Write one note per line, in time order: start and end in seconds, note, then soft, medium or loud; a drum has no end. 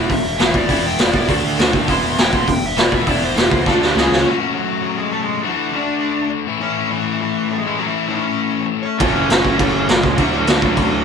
0.10 0.23 E1 loud
0.10 0.24 E3 medium
0.10 0.24 B3 medium
0.10 0.54 E5 loud
0.10 kick medium
0.10 open hi-hat medium
0.25 0.38 E1 medium
0.39 0.53 E1 loud
0.39 0.69 E3 medium
0.39 0.69 B3 medium
0.39 0.69 E4 loud
0.39 snare loud
0.39 open hi-hat medium
0.54 0.67 E1 medium
0.54 0.84 D5 loud
0.54 kick medium
0.69 0.82 E1 loud
0.69 0.98 E3 loud
0.69 0.99 B3 medium
0.69 0.99 E4 loud
0.69 kick medium
0.69 open hi-hat medium
0.84 0.97 E1 medium
0.84 1.00 G5 loud
0.98 1.12 E1 medium
0.98 1.28 E3 medium
0.98 1.29 B3 loud
0.98 1.29 E4 loud
0.98 1.14 D5 medium
0.98 snare loud
0.98 open hi-hat medium
1.13 1.27 E1 loud
1.13 1.29 D5 medium
1.13 kick medium
1.28 1.42 D2 medium
1.28 1.57 D3 loud
1.28 1.58 A3 medium
1.28 1.58 D4 loud
1.28 kick medium
1.28 open hi-hat medium
1.44 1.57 D2 medium
1.58 1.72 D2 medium
1.58 1.87 D3 loud
1.58 1.88 A3 loud
1.58 1.88 D4 loud
1.58 snare loud
1.58 open hi-hat medium
1.73 1.87 D#2 medium
1.73 kick medium
1.88 2.01 E1 loud
1.88 2.17 E3 loud
1.88 2.17 B3 loud
1.88 2.18 E4 loud
1.88 2.18 C6 loud
1.88 kick medium
1.88 open hi-hat medium
2.03 2.16 E1 loud
2.18 2.31 E1 medium
2.18 2.46 E3 loud
2.18 2.47 B3 medium
2.18 2.47 E4 loud
2.18 2.34 G5 loud
2.18 snare loud
2.18 open hi-hat medium
2.33 2.46 E1 loud
2.33 2.49 C6 medium
2.33 kick loud
2.47 2.61 E1 medium
2.47 2.61 E3 medium
2.47 2.61 B3 loud
2.47 kick medium
2.47 open hi-hat medium
2.52 2.66 G5 medium
2.62 2.75 E1 medium
2.62 2.79 E5 medium
2.77 2.90 E1 medium
2.77 3.06 E3 loud
2.77 3.06 B3 loud
2.77 3.06 E4 loud
2.77 2.94 D5 loud
2.77 snare loud
2.77 open hi-hat medium
2.92 3.05 E1 medium
2.92 3.08 E5 loud
2.92 kick medium
3.07 3.20 E1 loud
3.07 3.35 E3 medium
3.07 3.36 B3 loud
3.07 3.36 E4 loud
3.07 3.22 D5 medium
3.07 kick medium
3.07 open hi-hat medium
3.22 3.35 E1 loud
3.22 3.38 C5 loud
3.37 3.50 E1 medium
3.37 3.66 E3 medium
3.37 3.66 B3 loud
3.37 3.66 E4 loud
3.37 3.51 G4 loud
3.37 snare loud
3.37 open hi-hat medium
3.51 3.64 C#2 medium
3.51 3.67 C5 medium
3.51 kick medium
3.66 3.79 D2 medium
3.66 3.96 D3 medium
3.66 3.96 A3 loud
3.66 3.96 D4 loud
3.66 3.82 A4 medium
3.66 kick loud
3.66 snare medium
3.81 3.94 D2 medium
3.81 3.98 G4 medium
3.81 snare medium
3.96 4.09 C#2 medium
3.96 4.25 C#3 loud
3.96 4.25 G#3 medium
3.96 4.25 C#4 loud
3.96 4.11 G#4 loud
3.96 snare medium
4.11 4.24 C#2 medium
4.11 snare loud
4.25 5.43 F#3 loud
4.25 5.44 A3 loud
4.25 4.56 C#4 medium
4.25 5.44 C#4 loud
4.25 5.44 F#4 medium
4.25 4.54 C#5 medium
4.54 4.83 F#3 medium
4.54 4.81 F#4 medium
4.83 4.99 F#3 medium
4.83 4.97 F#4 loud
4.98 5.14 G#3 medium
4.98 5.12 G#4 loud
5.12 5.22 A3 medium
5.12 5.21 A4 loud
5.21 5.43 G#3 medium
5.21 5.42 G#4 medium
5.42 6.47 D3 medium
5.42 5.52 F#3 medium
5.42 6.48 A3 loud
5.42 6.47 D4 loud
5.42 5.49 F#4 medium
5.42 6.48 F#4 loud
5.49 5.73 E3 medium
5.49 5.71 E4 loud
5.73 6.28 D4 medium
5.73 6.30 D5 medium
6.47 7.64 A2 loud
6.47 7.65 E3 loud
6.47 7.67 A3 loud
6.47 7.67 C#4 loud
6.47 7.66 E4 loud
6.61 6.89 C#4 medium
6.61 6.90 C#5 medium
6.91 7.20 E3 medium
6.91 7.21 E4 medium
7.22 7.50 E3 medium
7.22 7.52 E4 loud
7.51 7.59 A3 medium
7.51 7.58 A4 loud
7.58 7.80 G#3 medium
7.58 7.79 G#4 medium
7.66 8.83 A2 loud
7.66 8.84 E3 medium
7.66 9.00 A3 loud
7.66 8.84 C#4 loud
7.66 8.85 E4 loud
7.79 7.88 F#3 medium
7.79 7.88 F#4 loud
7.87 8.09 E3 medium
7.87 8.08 E4 loud
8.09 8.65 C#4 loud
8.09 8.66 C#5 medium
8.83 8.99 C#4 medium
8.83 8.99 C#5 loud
8.98 9.12 F#1 loud
8.98 10.17 F#2 medium
8.98 10.16 C#3 medium
8.98 10.17 F#3 loud
8.98 10.18 A3 medium
8.98 9.14 A3 medium
8.98 10.18 C#4 loud
8.98 9.14 A4 loud
8.98 kick loud
8.98 crash medium
9.02 10.18 F#4 medium
9.13 9.26 F#1 medium
9.13 9.56 C#4 loud
9.13 9.59 C#5 loud
9.29 9.41 F#1 medium
9.29 snare loud
9.29 crash medium
9.45 9.56 F#1 medium
9.45 kick medium
9.58 9.71 F#1 loud
9.58 9.87 A3 medium
9.58 9.87 A4 loud
9.58 kick loud
9.58 crash medium
9.74 9.86 F#1 medium
9.88 10.01 F#1 medium
9.88 10.17 G#3 medium
9.88 10.15 G#4 loud
9.88 snare loud
9.88 crash medium
10.03 10.15 C#2 loud
10.03 kick medium
10.17 10.30 D2 loud
10.17 11.04 D3 medium
10.17 11.04 F#3 medium
10.17 10.32 F#3 medium
10.17 11.04 A3 loud
10.17 11.04 D4 loud
10.17 10.31 F#4 loud
10.17 11.04 F#4 loud
10.17 kick loud
10.17 crash medium
10.32 10.45 D2 medium
10.32 10.41 F#3 medium
10.32 10.38 F#4 loud
10.47 10.60 D2 medium
10.47 10.62 E3 medium
10.47 10.62 E4 loud
10.47 snare loud
10.47 crash medium
10.61 10.74 D2 loud
10.61 11.04 F#3 medium
10.61 11.04 F#4 loud
10.61 kick medium
10.77 10.89 D2 medium
10.77 kick medium
10.77 crash medium
10.92 11.04 D2 medium